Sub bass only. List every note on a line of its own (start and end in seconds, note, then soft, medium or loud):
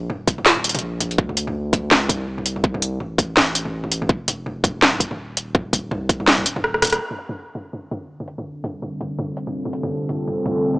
0.10 0.81 D#1 loud
0.82 1.17 A#1 loud
1.18 1.94 D2 loud
1.94 2.26 C#2 loud
2.27 2.99 C2 loud
3.00 4.08 A1 loud
4.09 5.17 F1 loud
5.18 5.90 D#1 loud
5.91 6.45 C2 medium
6.46 6.99 D#1 loud